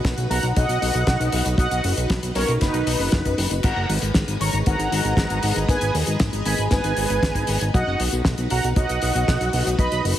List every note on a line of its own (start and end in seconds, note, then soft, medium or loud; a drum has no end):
0.00 3.60 D#4 medium
0.00 3.60 F#4 medium
0.00 7.70 B4 medium
0.05 0.14 B1 loud
0.05 kick loud
0.05 snare loud
0.05 closed hi-hat medium
0.18 0.27 B1 medium
0.18 closed hi-hat medium
0.30 0.40 B1 loud
0.30 0.48 F#5 medium
0.30 0.48 A#5 medium
0.30 open hi-hat loud
0.43 0.53 B1 medium
0.43 closed hi-hat medium
0.56 0.66 B1 loud
0.56 1.48 D#5 medium
0.56 1.48 F#5 loud
0.56 kick loud
0.56 closed hi-hat medium
0.69 0.78 B1 medium
0.69 closed hi-hat soft
0.82 0.91 B1 loud
0.82 open hi-hat loud
0.94 1.04 B1 medium
0.94 closed hi-hat medium
1.07 1.17 B1 loud
1.07 kick loud
1.07 snare loud
1.07 closed hi-hat medium
1.20 1.29 B1 medium
1.20 closed hi-hat medium
1.32 1.42 B1 medium
1.32 open hi-hat loud
1.46 1.55 B1 medium
1.46 closed hi-hat medium
1.58 1.68 B1 loud
1.58 1.85 D#5 medium
1.58 1.85 F#5 loud
1.58 kick loud
1.58 closed hi-hat medium
1.71 1.81 B1 medium
1.71 closed hi-hat medium
1.84 1.94 F#1 medium
1.84 open hi-hat loud
1.97 2.06 B1 medium
1.97 closed hi-hat medium
2.10 2.19 B1 loud
2.10 kick loud
2.10 snare loud
2.10 closed hi-hat medium
2.23 2.32 B1 medium
2.23 closed hi-hat medium
2.35 2.45 B1 loud
2.35 2.53 A#4 medium
2.35 2.53 C#5 loud
2.35 open hi-hat loud
2.48 2.58 B1 medium
2.48 closed hi-hat medium
2.61 2.71 F#1 loud
2.61 3.53 D#4 medium
2.61 3.53 B4 loud
2.61 kick loud
2.61 snare medium
2.61 closed hi-hat loud
2.74 2.83 B1 medium
2.74 closed hi-hat medium
2.87 2.96 B1 loud
2.87 open hi-hat loud
2.99 3.09 F#1 medium
2.99 open hi-hat medium
3.12 3.22 F#1 loud
3.12 kick loud
3.12 snare loud
3.12 closed hi-hat medium
3.25 3.35 F#1 medium
3.25 kick medium
3.25 closed hi-hat medium
3.38 3.47 F#1 loud
3.38 open hi-hat loud
3.51 3.60 F#1 medium
3.51 closed hi-hat medium
3.63 3.73 G#1 loud
3.63 7.70 G#3 medium
3.63 7.70 G#4 medium
3.63 7.70 D#5 medium
3.63 3.90 F#5 medium
3.63 3.90 A#5 loud
3.63 7.70 A#5 medium
3.63 kick loud
3.63 closed hi-hat loud
3.63 crash medium
3.76 3.86 F#1 medium
3.89 3.99 G#1 loud
3.89 open hi-hat loud
4.02 4.11 G#1 medium
4.02 closed hi-hat medium
4.14 4.25 G#1 loud
4.14 kick loud
4.14 snare loud
4.14 closed hi-hat loud
4.28 4.37 G#1 medium
4.28 closed hi-hat medium
4.40 4.50 G#1 loud
4.40 4.58 A#5 medium
4.40 4.58 C#6 medium
4.40 open hi-hat loud
4.53 4.63 G#1 medium
4.53 closed hi-hat medium
4.66 4.76 G#1 loud
4.66 5.59 F#5 medium
4.66 5.59 A#5 loud
4.66 kick loud
4.66 closed hi-hat medium
4.79 4.88 G#1 medium
4.79 closed hi-hat medium
4.92 5.01 G#1 medium
4.92 open hi-hat loud
5.05 5.14 G#1 medium
5.05 closed hi-hat medium
5.17 5.27 G#1 loud
5.17 kick loud
5.17 snare loud
5.17 closed hi-hat medium
5.30 5.40 G#1 medium
5.30 closed hi-hat medium
5.43 5.53 G#1 medium
5.43 open hi-hat loud
5.56 5.65 G#1 medium
5.56 closed hi-hat medium
5.69 5.78 G#1 loud
5.69 5.95 B4 medium
5.69 5.95 G#5 loud
5.69 kick loud
5.69 closed hi-hat loud
5.81 5.91 G#1 medium
5.81 closed hi-hat medium
5.94 6.04 D#2 medium
5.94 open hi-hat loud
6.07 6.17 G#1 medium
6.07 closed hi-hat medium
6.20 6.30 G#1 loud
6.20 kick loud
6.20 snare loud
6.20 closed hi-hat medium
6.33 6.42 G#1 medium
6.33 closed hi-hat medium
6.45 6.55 G#1 medium
6.45 6.63 G#5 medium
6.45 6.63 B5 medium
6.45 open hi-hat loud
6.58 6.68 G#1 medium
6.58 closed hi-hat medium
6.71 6.81 G#1 loud
6.71 7.63 B4 medium
6.71 7.64 G#5 loud
6.71 kick loud
6.71 snare medium
6.71 closed hi-hat medium
6.84 6.94 G#1 medium
6.84 closed hi-hat medium
6.97 7.06 G#1 loud
6.97 open hi-hat loud
7.10 7.19 G#1 medium
7.10 closed hi-hat medium
7.23 7.32 G#1 loud
7.23 kick loud
7.23 snare loud
7.23 closed hi-hat loud
7.35 7.45 G#1 medium
7.35 kick medium
7.35 closed hi-hat medium
7.47 7.58 G#1 medium
7.47 open hi-hat loud
7.61 7.71 G#1 medium
7.61 closed hi-hat medium
7.74 7.84 B1 loud
7.74 10.19 D#4 medium
7.74 10.19 F#4 medium
7.74 10.19 B4 medium
7.74 8.00 D#5 medium
7.74 8.00 F#5 loud
7.74 kick loud
7.74 closed hi-hat medium
7.87 7.96 F#1 medium
8.00 8.09 B1 medium
8.00 open hi-hat loud
8.12 8.22 B1 medium
8.12 closed hi-hat medium
8.25 8.35 B1 loud
8.25 kick loud
8.25 snare loud
8.25 closed hi-hat medium
8.38 8.48 B1 medium
8.38 closed hi-hat medium
8.50 8.60 B1 loud
8.50 8.68 F#5 medium
8.50 8.68 A#5 medium
8.50 open hi-hat loud
8.64 8.73 B1 medium
8.64 closed hi-hat medium
8.76 8.86 B1 loud
8.76 9.69 D#5 medium
8.76 9.69 F#5 loud
8.76 kick loud
8.76 closed hi-hat medium
8.89 8.99 B1 medium
8.89 closed hi-hat medium
9.02 9.12 B1 loud
9.02 open hi-hat loud
9.15 9.25 B1 medium
9.15 closed hi-hat medium
9.28 9.37 B1 loud
9.28 kick loud
9.28 snare loud
9.28 closed hi-hat loud
9.41 9.50 B1 medium
9.41 closed hi-hat medium
9.53 9.63 B1 medium
9.53 open hi-hat loud
9.66 9.76 B1 medium
9.66 closed hi-hat medium
9.79 9.88 B1 loud
9.79 10.05 D#5 medium
9.79 10.05 B5 loud
9.79 kick loud
9.79 closed hi-hat medium
9.92 10.01 B1 medium
9.92 closed hi-hat medium
10.05 10.14 F#1 loud
10.05 open hi-hat loud